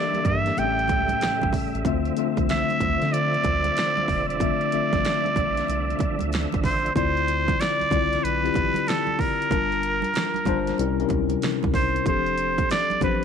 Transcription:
Already playing: tonewheel organ D3 G3 A#3 E5, tine electric piano E3 A#3 D4 G4 D#5 E5, muted trumpet D5
0.14 closed hi-hat, high conga
0.25 analog synth bass G2, muted trumpet E5, kick, closed hi-hat, muted conga, high conga, low conga
0.46 snare, closed hi-hat
0.57 analog synth bass A1, tine electric piano A2 A3 C4 G4 E5, tonewheel organ C#3 A3, muted trumpet G5, closed hi-hat, muted conga
0.64 tine electric piano C#4
0.79 closed hi-hat
0.88 analog synth bass C#2, kick, closed hi-hat, high conga
1.08 closed hi-hat, high conga
1.21 analog synth bass A1, snare, closed hi-hat, muted conga
1.41 analog synth bass A1, kick, high conga
1.53 kick, open hi-hat, muted conga, low conga
1.74 analog synth bass A1, closed hi-hat
1.85 analog synth bass D2, tonewheel organ D3 F3 C4, tine electric piano D3 A3 C4 F4 E5, kick, closed hi-hat, muted conga, low conga
2.05 closed hi-hat
2.17 tine electric piano D3 A3 C4 F4 E5, closed hi-hat
2.37 analog synth bass C2, kick, closed hi-hat, high conga
2.49 muted trumpet E5, snare, closed hi-hat
2.69 closed hi-hat, high conga
2.80 analog synth bass D2, kick, closed hi-hat, muted conga, high conga, low conga
3.02 analog synth bass D3, snare, closed hi-hat
3.13 muted trumpet D5, closed hi-hat, muted conga
3.34 closed hi-hat
3.44 analog synth bass D2, kick, closed hi-hat, muted conga, high conga
3.64 closed hi-hat, high conga
3.77 snare, closed hi-hat
3.97 high conga
4.08 analog synth bass E1, kick, open hi-hat, low conga
4.29 muted trumpet D5, closed hi-hat
4.40 tine electric piano D3 A3 C4 F4 E5, tonewheel organ D4, kick, closed hi-hat, low conga
4.61 closed hi-hat
4.72 analog synth bass A1, tine electric piano D3 A3 C4 F4 E5, closed hi-hat
4.93 analog synth bass A1, kick, snare, closed hi-hat, high conga
5.05 snare, closed hi-hat, muted conga
5.24 closed hi-hat, high conga
5.36 analog synth bass A#1, kick, closed hi-hat, muted conga, high conga, low conga
5.57 snare, closed hi-hat
5.68 analog synth bass C2, closed hi-hat, muted conga
5.90 closed hi-hat
5.99 analog synth bass D2, kick, closed hi-hat, muted conga, high conga
6.19 analog synth bass D2, closed hi-hat, high conga
6.32 snare, closed hi-hat, muted conga
6.52 analog synth bass A1, kick, closed hi-hat, high conga
6.64 analog synth bass A1, muted trumpet C5, kick, open hi-hat, muted conga, low conga
6.86 closed hi-hat
6.96 analog synth bass D2, tine electric piano D3 C4 E4 F4 D5, muted trumpet C5, kick, closed hi-hat, muted conga, low conga
7.17 closed hi-hat
7.28 closed hi-hat, muted conga
7.48 kick, closed hi-hat, high conga
7.60 muted trumpet D5, snare, closed hi-hat, muted conga
7.80 analog synth bass C2, closed hi-hat, high conga
7.91 analog synth bass C2, tine electric piano D3 C4 E4 F4 D5, kick, closed hi-hat, high conga, low conga
8.13 snare, closed hi-hat
8.24 analog synth bass B1, muted trumpet B4, closed hi-hat
8.44 tine electric piano D3 C4 E4 F4 G4, closed hi-hat
8.54 analog synth bass A1, kick, closed hi-hat, muted conga, high conga
8.74 closed hi-hat, high conga
8.87 muted trumpet A4, snare, closed hi-hat, muted conga
9.07 high conga
9.19 muted trumpet A#4, kick, open hi-hat, low conga
9.42 closed hi-hat
9.51 analog synth bass G1, tine electric piano G3 D4 F4 A#4 A5, kick, closed hi-hat, muted conga, low conga
9.72 closed hi-hat
9.83 closed hi-hat
10.02 closed hi-hat, high conga
10.14 snare, closed hi-hat, muted conga
10.34 closed hi-hat, high conga
10.45 analog synth bass G1, tine electric piano G3 D4 F4 C5 A5, kick, closed hi-hat, muted conga, high conga, low conga
10.67 snare, closed hi-hat
10.78 analog synth bass C2, tine electric piano C3 G3 C#4 E4 A#4, closed hi-hat, muted conga
10.99 tine electric piano C3 G3 C#4 D#4 A#4, closed hi-hat
11.07 analog synth bass C#2, tine electric piano E4, kick, closed hi-hat, high conga
11.29 closed hi-hat, high conga
11.42 snare, closed hi-hat, muted conga
11.63 analog synth bass C#2, kick, high conga
11.74 analog synth bass C2, muted trumpet C5, kick, open hi-hat, muted conga, low conga
11.96 closed hi-hat
12.06 analog synth bass F1, tine electric piano F3 C4 D4 G4 A4, muted trumpet C5, kick, closed hi-hat, muted conga, low conga
12.26 closed hi-hat
12.38 closed hi-hat
12.58 kick, closed hi-hat, high conga
12.70 muted trumpet D5, snare, closed hi-hat, muted conga
12.90 analog synth bass A1, closed hi-hat, high conga
13.01 analog synth bass A1, tine electric piano F3 C4 D4 G4 C5, muted trumpet B4, kick, closed hi-hat, muted conga, high conga, low conga

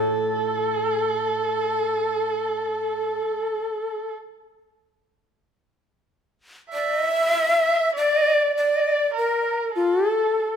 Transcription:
Already playing: koto A2 E3 A#3 E4 F4 A#4, shakuhachi A4, erhu A4
6.71 shakuhachi D5, erhu E5
6.94 shakuhachi D#5
7.08 shakuhachi E5
7.62 erhu E5
7.95 erhu D5, shakuhachi D5
8.55 erhu D5, shakuhachi D5
9.14 erhu A#4, shakuhachi A#4
9.73 shakuhachi F4, erhu A4
10.12 shakuhachi A4

